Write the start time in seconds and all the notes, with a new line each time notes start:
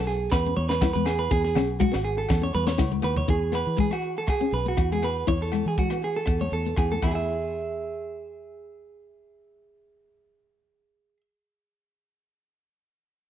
Already playing: B1 B3
0.05 G#4, snare, muted conga, maracas
0.30 E2 B4, kick, snare, low agogo, maracas
0.46 C#4
0.57 E2 C#5, muted conga, high conga
0.69 B3 B4, snare, maracas
0.80 E4, kick, snare, high conga, low agogo, maracas
0.93 E2 G#3 B4
1.06 B3 G#4, snare, low agogo, maracas
1.19 B4
1.31 E2 G#4, muted steel-string acoustic guitar stroke, kick, maracas
1.44 G#4, snare
1.55 B1 C#4, snare, low conga, low agogo, maracas
1.80 G#3 F#4, kick, high conga, maracas
1.92 G#1 B3, snare, low agogo, maracas
2.04 G#4, maracas
2.18 A4
2.29 E2, kick, snare, muted conga, low conga, low agogo, maracas
2.42 C#4 C#5, maracas
2.54 E2 B4, muted conga, high conga, maracas
2.67 B3 C#5, snare
2.78 C#2 E4, kick, snare, high conga, low agogo, maracas
2.91 G#3, maracas
3.02 D#2 A3 B4, low agogo, maracas
3.16 C#5, floor tom
3.28 E2 E4 G#4, kick, closed hi-hat, maracas
3.52 B3 B4, cross-stick, closed hi-hat, low agogo, maracas
3.66 E3, closed hi-hat
3.76 G#3 G#4, kick, closed hi-hat, maracas
3.90 B3 F#4, cross-stick, low agogo
4.02 closed hi-hat, maracas
4.17 A4, closed hi-hat
4.26 G#4, kick, cross-stick, closed hi-hat, low agogo, maracas
4.39 C#4, maracas
4.51 B1 B4, closed hi-hat, maracas
4.66 B3 F#4, closed hi-hat
4.77 E2 E4, kick, cross-stick, closed hi-hat, low agogo, maracas
4.92 G#3 G#4, maracas
5.02 B3 B4, cross-stick, closed hi-hat, low agogo, maracas
5.16 closed hi-hat, maracas
5.27 E2 E4 C#5, kick, closed hi-hat, maracas
5.42 A4
5.52 G#3, cross-stick, closed hi-hat, low agogo
5.66 E3 G#4, closed hi-hat
5.77 G#3 F#4, kick, closed hi-hat, maracas
5.90 B3, cross-stick, low agogo
6.02 G#4, closed hi-hat, maracas
6.15 A4, closed hi-hat
6.26 E2, kick, cross-stick, closed hi-hat, low agogo, maracas
6.40 A3 C#5, maracas
6.50 E2 A4, closed hi-hat, maracas
6.65 B3, closed hi-hat
6.76 E2 E4 G#4, kick, cross-stick, closed hi-hat, low agogo, maracas
6.90 A3 A4, maracas
7.02 E2 E3 E4, kick, crash, low agogo, maracas
7.07 G#4
7.15 E5